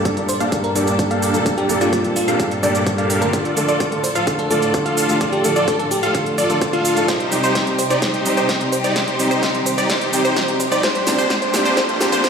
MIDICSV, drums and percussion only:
0, 0, Header, 1, 2, 480
1, 0, Start_track
1, 0, Key_signature, -2, "minor"
1, 0, Tempo, 468750
1, 1494, Time_signature, 4, 2, 24, 8
1, 12589, End_track
2, 0, Start_track
2, 0, Title_t, "Drums"
2, 54, Note_on_c, 9, 36, 114
2, 54, Note_on_c, 9, 42, 94
2, 54, Note_on_c, 9, 82, 34
2, 156, Note_off_c, 9, 36, 0
2, 157, Note_off_c, 9, 42, 0
2, 157, Note_off_c, 9, 82, 0
2, 174, Note_on_c, 9, 42, 40
2, 276, Note_off_c, 9, 42, 0
2, 294, Note_on_c, 9, 46, 106
2, 294, Note_on_c, 9, 82, 81
2, 396, Note_off_c, 9, 46, 0
2, 396, Note_off_c, 9, 82, 0
2, 414, Note_on_c, 9, 42, 39
2, 414, Note_on_c, 9, 82, 43
2, 517, Note_off_c, 9, 42, 0
2, 517, Note_off_c, 9, 82, 0
2, 534, Note_on_c, 9, 36, 115
2, 534, Note_on_c, 9, 42, 94
2, 534, Note_on_c, 9, 82, 31
2, 636, Note_off_c, 9, 36, 0
2, 637, Note_off_c, 9, 42, 0
2, 637, Note_off_c, 9, 82, 0
2, 654, Note_on_c, 9, 42, 39
2, 757, Note_off_c, 9, 42, 0
2, 774, Note_on_c, 9, 46, 102
2, 774, Note_on_c, 9, 82, 76
2, 876, Note_off_c, 9, 46, 0
2, 877, Note_off_c, 9, 82, 0
2, 894, Note_on_c, 9, 42, 40
2, 894, Note_on_c, 9, 82, 43
2, 997, Note_off_c, 9, 42, 0
2, 997, Note_off_c, 9, 82, 0
2, 1014, Note_on_c, 9, 36, 117
2, 1015, Note_on_c, 9, 42, 96
2, 1015, Note_on_c, 9, 82, 34
2, 1116, Note_off_c, 9, 36, 0
2, 1117, Note_off_c, 9, 42, 0
2, 1117, Note_off_c, 9, 82, 0
2, 1135, Note_on_c, 9, 42, 42
2, 1237, Note_off_c, 9, 42, 0
2, 1255, Note_on_c, 9, 46, 105
2, 1255, Note_on_c, 9, 82, 76
2, 1357, Note_off_c, 9, 46, 0
2, 1357, Note_off_c, 9, 82, 0
2, 1374, Note_on_c, 9, 42, 39
2, 1374, Note_on_c, 9, 82, 42
2, 1477, Note_off_c, 9, 42, 0
2, 1477, Note_off_c, 9, 82, 0
2, 1494, Note_on_c, 9, 36, 121
2, 1495, Note_on_c, 9, 42, 90
2, 1495, Note_on_c, 9, 82, 31
2, 1597, Note_off_c, 9, 36, 0
2, 1597, Note_off_c, 9, 42, 0
2, 1597, Note_off_c, 9, 82, 0
2, 1615, Note_on_c, 9, 42, 37
2, 1717, Note_off_c, 9, 42, 0
2, 1734, Note_on_c, 9, 46, 104
2, 1734, Note_on_c, 9, 82, 71
2, 1837, Note_off_c, 9, 46, 0
2, 1837, Note_off_c, 9, 82, 0
2, 1854, Note_on_c, 9, 42, 39
2, 1854, Note_on_c, 9, 82, 41
2, 1957, Note_off_c, 9, 42, 0
2, 1957, Note_off_c, 9, 82, 0
2, 1974, Note_on_c, 9, 36, 119
2, 1974, Note_on_c, 9, 42, 92
2, 1974, Note_on_c, 9, 82, 33
2, 2076, Note_off_c, 9, 42, 0
2, 2077, Note_off_c, 9, 36, 0
2, 2077, Note_off_c, 9, 82, 0
2, 2094, Note_on_c, 9, 42, 39
2, 2196, Note_off_c, 9, 42, 0
2, 2214, Note_on_c, 9, 46, 109
2, 2214, Note_on_c, 9, 82, 78
2, 2316, Note_off_c, 9, 46, 0
2, 2316, Note_off_c, 9, 82, 0
2, 2334, Note_on_c, 9, 42, 40
2, 2334, Note_on_c, 9, 82, 43
2, 2436, Note_off_c, 9, 42, 0
2, 2437, Note_off_c, 9, 82, 0
2, 2454, Note_on_c, 9, 36, 120
2, 2454, Note_on_c, 9, 42, 91
2, 2454, Note_on_c, 9, 82, 30
2, 2557, Note_off_c, 9, 36, 0
2, 2557, Note_off_c, 9, 42, 0
2, 2557, Note_off_c, 9, 82, 0
2, 2574, Note_on_c, 9, 42, 41
2, 2677, Note_off_c, 9, 42, 0
2, 2694, Note_on_c, 9, 46, 104
2, 2695, Note_on_c, 9, 82, 73
2, 2797, Note_off_c, 9, 46, 0
2, 2797, Note_off_c, 9, 82, 0
2, 2815, Note_on_c, 9, 42, 38
2, 2815, Note_on_c, 9, 82, 42
2, 2917, Note_off_c, 9, 42, 0
2, 2917, Note_off_c, 9, 82, 0
2, 2934, Note_on_c, 9, 36, 118
2, 2935, Note_on_c, 9, 42, 94
2, 2935, Note_on_c, 9, 82, 33
2, 3037, Note_off_c, 9, 36, 0
2, 3037, Note_off_c, 9, 42, 0
2, 3037, Note_off_c, 9, 82, 0
2, 3055, Note_on_c, 9, 42, 41
2, 3157, Note_off_c, 9, 42, 0
2, 3174, Note_on_c, 9, 46, 110
2, 3174, Note_on_c, 9, 82, 73
2, 3276, Note_off_c, 9, 46, 0
2, 3276, Note_off_c, 9, 82, 0
2, 3294, Note_on_c, 9, 42, 38
2, 3294, Note_on_c, 9, 82, 42
2, 3396, Note_off_c, 9, 42, 0
2, 3397, Note_off_c, 9, 82, 0
2, 3414, Note_on_c, 9, 36, 119
2, 3414, Note_on_c, 9, 42, 86
2, 3414, Note_on_c, 9, 82, 32
2, 3517, Note_off_c, 9, 36, 0
2, 3517, Note_off_c, 9, 42, 0
2, 3517, Note_off_c, 9, 82, 0
2, 3535, Note_on_c, 9, 42, 37
2, 3637, Note_off_c, 9, 42, 0
2, 3654, Note_on_c, 9, 46, 105
2, 3654, Note_on_c, 9, 82, 72
2, 3757, Note_off_c, 9, 46, 0
2, 3757, Note_off_c, 9, 82, 0
2, 3774, Note_on_c, 9, 42, 38
2, 3774, Note_on_c, 9, 82, 42
2, 3877, Note_off_c, 9, 42, 0
2, 3877, Note_off_c, 9, 82, 0
2, 3894, Note_on_c, 9, 36, 122
2, 3895, Note_on_c, 9, 42, 92
2, 3895, Note_on_c, 9, 82, 33
2, 3997, Note_off_c, 9, 36, 0
2, 3997, Note_off_c, 9, 42, 0
2, 3997, Note_off_c, 9, 82, 0
2, 4014, Note_on_c, 9, 42, 39
2, 4117, Note_off_c, 9, 42, 0
2, 4135, Note_on_c, 9, 46, 114
2, 4135, Note_on_c, 9, 82, 74
2, 4237, Note_off_c, 9, 46, 0
2, 4237, Note_off_c, 9, 82, 0
2, 4254, Note_on_c, 9, 42, 37
2, 4254, Note_on_c, 9, 82, 42
2, 4357, Note_off_c, 9, 42, 0
2, 4357, Note_off_c, 9, 82, 0
2, 4374, Note_on_c, 9, 36, 121
2, 4374, Note_on_c, 9, 42, 89
2, 4374, Note_on_c, 9, 82, 30
2, 4477, Note_off_c, 9, 36, 0
2, 4477, Note_off_c, 9, 42, 0
2, 4477, Note_off_c, 9, 82, 0
2, 4494, Note_on_c, 9, 42, 38
2, 4596, Note_off_c, 9, 42, 0
2, 4614, Note_on_c, 9, 46, 106
2, 4614, Note_on_c, 9, 82, 73
2, 4716, Note_off_c, 9, 46, 0
2, 4716, Note_off_c, 9, 82, 0
2, 4734, Note_on_c, 9, 42, 38
2, 4734, Note_on_c, 9, 82, 42
2, 4836, Note_off_c, 9, 42, 0
2, 4836, Note_off_c, 9, 82, 0
2, 4854, Note_on_c, 9, 36, 124
2, 4854, Note_on_c, 9, 42, 90
2, 4854, Note_on_c, 9, 82, 33
2, 4956, Note_off_c, 9, 42, 0
2, 4956, Note_off_c, 9, 82, 0
2, 4957, Note_off_c, 9, 36, 0
2, 4974, Note_on_c, 9, 42, 39
2, 5076, Note_off_c, 9, 42, 0
2, 5094, Note_on_c, 9, 46, 111
2, 5094, Note_on_c, 9, 82, 72
2, 5196, Note_off_c, 9, 46, 0
2, 5196, Note_off_c, 9, 82, 0
2, 5214, Note_on_c, 9, 42, 38
2, 5214, Note_on_c, 9, 82, 40
2, 5316, Note_off_c, 9, 42, 0
2, 5316, Note_off_c, 9, 82, 0
2, 5334, Note_on_c, 9, 36, 120
2, 5334, Note_on_c, 9, 42, 89
2, 5334, Note_on_c, 9, 82, 32
2, 5436, Note_off_c, 9, 42, 0
2, 5436, Note_off_c, 9, 82, 0
2, 5437, Note_off_c, 9, 36, 0
2, 5454, Note_on_c, 9, 42, 36
2, 5556, Note_off_c, 9, 42, 0
2, 5574, Note_on_c, 9, 46, 104
2, 5574, Note_on_c, 9, 82, 75
2, 5676, Note_off_c, 9, 46, 0
2, 5676, Note_off_c, 9, 82, 0
2, 5694, Note_on_c, 9, 42, 36
2, 5694, Note_on_c, 9, 82, 44
2, 5796, Note_off_c, 9, 42, 0
2, 5796, Note_off_c, 9, 82, 0
2, 5814, Note_on_c, 9, 36, 126
2, 5814, Note_on_c, 9, 42, 93
2, 5814, Note_on_c, 9, 82, 33
2, 5916, Note_off_c, 9, 36, 0
2, 5916, Note_off_c, 9, 42, 0
2, 5916, Note_off_c, 9, 82, 0
2, 5934, Note_on_c, 9, 42, 37
2, 6036, Note_off_c, 9, 42, 0
2, 6054, Note_on_c, 9, 46, 111
2, 6054, Note_on_c, 9, 82, 77
2, 6156, Note_off_c, 9, 46, 0
2, 6156, Note_off_c, 9, 82, 0
2, 6174, Note_on_c, 9, 42, 36
2, 6174, Note_on_c, 9, 82, 43
2, 6276, Note_off_c, 9, 42, 0
2, 6276, Note_off_c, 9, 82, 0
2, 6294, Note_on_c, 9, 36, 117
2, 6294, Note_on_c, 9, 42, 87
2, 6294, Note_on_c, 9, 82, 32
2, 6396, Note_off_c, 9, 36, 0
2, 6397, Note_off_c, 9, 42, 0
2, 6397, Note_off_c, 9, 82, 0
2, 6414, Note_on_c, 9, 42, 37
2, 6516, Note_off_c, 9, 42, 0
2, 6534, Note_on_c, 9, 46, 108
2, 6534, Note_on_c, 9, 82, 74
2, 6636, Note_off_c, 9, 46, 0
2, 6636, Note_off_c, 9, 82, 0
2, 6654, Note_on_c, 9, 42, 37
2, 6654, Note_on_c, 9, 82, 43
2, 6757, Note_off_c, 9, 42, 0
2, 6757, Note_off_c, 9, 82, 0
2, 6774, Note_on_c, 9, 36, 126
2, 6774, Note_on_c, 9, 42, 87
2, 6774, Note_on_c, 9, 82, 34
2, 6876, Note_off_c, 9, 36, 0
2, 6877, Note_off_c, 9, 42, 0
2, 6877, Note_off_c, 9, 82, 0
2, 6894, Note_on_c, 9, 42, 40
2, 6997, Note_off_c, 9, 42, 0
2, 7014, Note_on_c, 9, 46, 110
2, 7014, Note_on_c, 9, 82, 78
2, 7116, Note_off_c, 9, 46, 0
2, 7117, Note_off_c, 9, 82, 0
2, 7134, Note_on_c, 9, 42, 35
2, 7134, Note_on_c, 9, 82, 40
2, 7237, Note_off_c, 9, 42, 0
2, 7237, Note_off_c, 9, 82, 0
2, 7254, Note_on_c, 9, 36, 116
2, 7255, Note_on_c, 9, 38, 47
2, 7255, Note_on_c, 9, 42, 86
2, 7255, Note_on_c, 9, 82, 34
2, 7357, Note_off_c, 9, 36, 0
2, 7357, Note_off_c, 9, 38, 0
2, 7357, Note_off_c, 9, 42, 0
2, 7357, Note_off_c, 9, 82, 0
2, 7375, Note_on_c, 9, 42, 36
2, 7477, Note_off_c, 9, 42, 0
2, 7495, Note_on_c, 9, 46, 108
2, 7495, Note_on_c, 9, 82, 78
2, 7597, Note_off_c, 9, 46, 0
2, 7597, Note_off_c, 9, 82, 0
2, 7615, Note_on_c, 9, 42, 38
2, 7615, Note_on_c, 9, 82, 45
2, 7717, Note_off_c, 9, 42, 0
2, 7717, Note_off_c, 9, 82, 0
2, 7734, Note_on_c, 9, 36, 117
2, 7734, Note_on_c, 9, 38, 52
2, 7734, Note_on_c, 9, 42, 91
2, 7734, Note_on_c, 9, 82, 34
2, 7837, Note_off_c, 9, 36, 0
2, 7837, Note_off_c, 9, 38, 0
2, 7837, Note_off_c, 9, 42, 0
2, 7837, Note_off_c, 9, 82, 0
2, 7854, Note_on_c, 9, 42, 39
2, 7956, Note_off_c, 9, 42, 0
2, 7974, Note_on_c, 9, 46, 110
2, 7974, Note_on_c, 9, 82, 81
2, 8076, Note_off_c, 9, 46, 0
2, 8076, Note_off_c, 9, 82, 0
2, 8094, Note_on_c, 9, 42, 38
2, 8094, Note_on_c, 9, 82, 43
2, 8196, Note_off_c, 9, 42, 0
2, 8196, Note_off_c, 9, 82, 0
2, 8214, Note_on_c, 9, 36, 115
2, 8214, Note_on_c, 9, 38, 53
2, 8214, Note_on_c, 9, 42, 87
2, 8214, Note_on_c, 9, 82, 33
2, 8316, Note_off_c, 9, 38, 0
2, 8316, Note_off_c, 9, 42, 0
2, 8316, Note_off_c, 9, 82, 0
2, 8317, Note_off_c, 9, 36, 0
2, 8334, Note_on_c, 9, 42, 38
2, 8437, Note_off_c, 9, 42, 0
2, 8454, Note_on_c, 9, 46, 107
2, 8454, Note_on_c, 9, 82, 77
2, 8557, Note_off_c, 9, 46, 0
2, 8557, Note_off_c, 9, 82, 0
2, 8574, Note_on_c, 9, 42, 37
2, 8574, Note_on_c, 9, 82, 43
2, 8676, Note_off_c, 9, 42, 0
2, 8676, Note_off_c, 9, 82, 0
2, 8694, Note_on_c, 9, 36, 122
2, 8694, Note_on_c, 9, 38, 58
2, 8694, Note_on_c, 9, 42, 89
2, 8694, Note_on_c, 9, 82, 34
2, 8796, Note_off_c, 9, 36, 0
2, 8796, Note_off_c, 9, 38, 0
2, 8796, Note_off_c, 9, 42, 0
2, 8796, Note_off_c, 9, 82, 0
2, 8814, Note_on_c, 9, 42, 39
2, 8917, Note_off_c, 9, 42, 0
2, 8934, Note_on_c, 9, 46, 108
2, 8934, Note_on_c, 9, 82, 77
2, 9036, Note_off_c, 9, 46, 0
2, 9036, Note_off_c, 9, 82, 0
2, 9054, Note_on_c, 9, 42, 37
2, 9054, Note_on_c, 9, 82, 43
2, 9156, Note_off_c, 9, 42, 0
2, 9156, Note_off_c, 9, 82, 0
2, 9174, Note_on_c, 9, 36, 116
2, 9174, Note_on_c, 9, 38, 60
2, 9174, Note_on_c, 9, 42, 90
2, 9174, Note_on_c, 9, 82, 35
2, 9276, Note_off_c, 9, 36, 0
2, 9277, Note_off_c, 9, 38, 0
2, 9277, Note_off_c, 9, 42, 0
2, 9277, Note_off_c, 9, 82, 0
2, 9294, Note_on_c, 9, 42, 38
2, 9396, Note_off_c, 9, 42, 0
2, 9414, Note_on_c, 9, 46, 100
2, 9414, Note_on_c, 9, 82, 80
2, 9517, Note_off_c, 9, 46, 0
2, 9517, Note_off_c, 9, 82, 0
2, 9534, Note_on_c, 9, 42, 40
2, 9534, Note_on_c, 9, 82, 47
2, 9637, Note_off_c, 9, 42, 0
2, 9637, Note_off_c, 9, 82, 0
2, 9654, Note_on_c, 9, 36, 114
2, 9654, Note_on_c, 9, 38, 63
2, 9654, Note_on_c, 9, 42, 96
2, 9654, Note_on_c, 9, 82, 36
2, 9756, Note_off_c, 9, 36, 0
2, 9757, Note_off_c, 9, 38, 0
2, 9757, Note_off_c, 9, 42, 0
2, 9757, Note_off_c, 9, 82, 0
2, 9774, Note_on_c, 9, 42, 40
2, 9877, Note_off_c, 9, 42, 0
2, 9894, Note_on_c, 9, 46, 105
2, 9894, Note_on_c, 9, 82, 86
2, 9997, Note_off_c, 9, 46, 0
2, 9997, Note_off_c, 9, 82, 0
2, 10014, Note_on_c, 9, 42, 39
2, 10014, Note_on_c, 9, 82, 47
2, 10116, Note_off_c, 9, 42, 0
2, 10116, Note_off_c, 9, 82, 0
2, 10134, Note_on_c, 9, 36, 112
2, 10134, Note_on_c, 9, 38, 67
2, 10134, Note_on_c, 9, 42, 92
2, 10134, Note_on_c, 9, 82, 35
2, 10236, Note_off_c, 9, 36, 0
2, 10237, Note_off_c, 9, 38, 0
2, 10237, Note_off_c, 9, 42, 0
2, 10237, Note_off_c, 9, 82, 0
2, 10254, Note_on_c, 9, 42, 39
2, 10356, Note_off_c, 9, 42, 0
2, 10374, Note_on_c, 9, 46, 102
2, 10374, Note_on_c, 9, 82, 82
2, 10476, Note_off_c, 9, 46, 0
2, 10476, Note_off_c, 9, 82, 0
2, 10494, Note_on_c, 9, 42, 40
2, 10494, Note_on_c, 9, 82, 46
2, 10597, Note_off_c, 9, 42, 0
2, 10597, Note_off_c, 9, 82, 0
2, 10614, Note_on_c, 9, 36, 115
2, 10614, Note_on_c, 9, 38, 72
2, 10614, Note_on_c, 9, 42, 93
2, 10614, Note_on_c, 9, 82, 36
2, 10716, Note_off_c, 9, 36, 0
2, 10717, Note_off_c, 9, 38, 0
2, 10717, Note_off_c, 9, 42, 0
2, 10717, Note_off_c, 9, 82, 0
2, 10735, Note_on_c, 9, 42, 42
2, 10837, Note_off_c, 9, 42, 0
2, 10855, Note_on_c, 9, 46, 104
2, 10855, Note_on_c, 9, 82, 83
2, 10957, Note_off_c, 9, 46, 0
2, 10957, Note_off_c, 9, 82, 0
2, 10975, Note_on_c, 9, 42, 37
2, 10975, Note_on_c, 9, 82, 46
2, 11077, Note_off_c, 9, 42, 0
2, 11077, Note_off_c, 9, 82, 0
2, 11094, Note_on_c, 9, 36, 113
2, 11095, Note_on_c, 9, 38, 72
2, 11095, Note_on_c, 9, 42, 92
2, 11095, Note_on_c, 9, 82, 34
2, 11196, Note_off_c, 9, 36, 0
2, 11197, Note_off_c, 9, 38, 0
2, 11197, Note_off_c, 9, 42, 0
2, 11198, Note_off_c, 9, 82, 0
2, 11215, Note_on_c, 9, 42, 39
2, 11317, Note_off_c, 9, 42, 0
2, 11334, Note_on_c, 9, 38, 74
2, 11334, Note_on_c, 9, 46, 104
2, 11334, Note_on_c, 9, 82, 83
2, 11437, Note_off_c, 9, 38, 0
2, 11437, Note_off_c, 9, 46, 0
2, 11437, Note_off_c, 9, 82, 0
2, 11455, Note_on_c, 9, 42, 41
2, 11455, Note_on_c, 9, 82, 48
2, 11557, Note_off_c, 9, 42, 0
2, 11557, Note_off_c, 9, 82, 0
2, 11574, Note_on_c, 9, 36, 116
2, 11574, Note_on_c, 9, 38, 82
2, 11574, Note_on_c, 9, 42, 99
2, 11574, Note_on_c, 9, 82, 37
2, 11676, Note_off_c, 9, 36, 0
2, 11676, Note_off_c, 9, 38, 0
2, 11676, Note_off_c, 9, 42, 0
2, 11676, Note_off_c, 9, 82, 0
2, 11694, Note_on_c, 9, 42, 40
2, 11796, Note_off_c, 9, 42, 0
2, 11814, Note_on_c, 9, 38, 86
2, 11814, Note_on_c, 9, 46, 105
2, 11814, Note_on_c, 9, 82, 87
2, 11916, Note_off_c, 9, 38, 0
2, 11916, Note_off_c, 9, 46, 0
2, 11916, Note_off_c, 9, 82, 0
2, 11934, Note_on_c, 9, 42, 40
2, 11934, Note_on_c, 9, 82, 47
2, 12037, Note_off_c, 9, 42, 0
2, 12037, Note_off_c, 9, 82, 0
2, 12054, Note_on_c, 9, 36, 113
2, 12054, Note_on_c, 9, 38, 83
2, 12054, Note_on_c, 9, 42, 96
2, 12054, Note_on_c, 9, 82, 35
2, 12156, Note_off_c, 9, 36, 0
2, 12156, Note_off_c, 9, 38, 0
2, 12156, Note_off_c, 9, 42, 0
2, 12156, Note_off_c, 9, 82, 0
2, 12175, Note_on_c, 9, 42, 41
2, 12277, Note_off_c, 9, 42, 0
2, 12295, Note_on_c, 9, 38, 86
2, 12295, Note_on_c, 9, 46, 101
2, 12295, Note_on_c, 9, 82, 81
2, 12397, Note_off_c, 9, 38, 0
2, 12397, Note_off_c, 9, 46, 0
2, 12397, Note_off_c, 9, 82, 0
2, 12414, Note_on_c, 9, 42, 41
2, 12415, Note_on_c, 9, 82, 46
2, 12517, Note_off_c, 9, 42, 0
2, 12517, Note_off_c, 9, 82, 0
2, 12534, Note_on_c, 9, 36, 116
2, 12534, Note_on_c, 9, 38, 90
2, 12534, Note_on_c, 9, 42, 96
2, 12534, Note_on_c, 9, 82, 37
2, 12589, Note_off_c, 9, 36, 0
2, 12589, Note_off_c, 9, 38, 0
2, 12589, Note_off_c, 9, 42, 0
2, 12589, Note_off_c, 9, 82, 0
2, 12589, End_track
0, 0, End_of_file